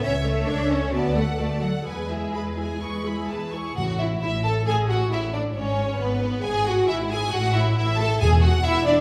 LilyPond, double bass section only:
\new Staff \with { instrumentName = "Double bass section" } { \clef bass \time 4/4 \key e \mixolydian \tempo 4 = 135 cis,4 cis,4 d,4 d,4 | e,4 e,4 e,4 e,4 | a,,4 a,,4 a,,4 a,,4 | gis,,4 gis,,4 gis,,4 gis,,4 |
a,,4 a,,4 e,,4 e,,4 | }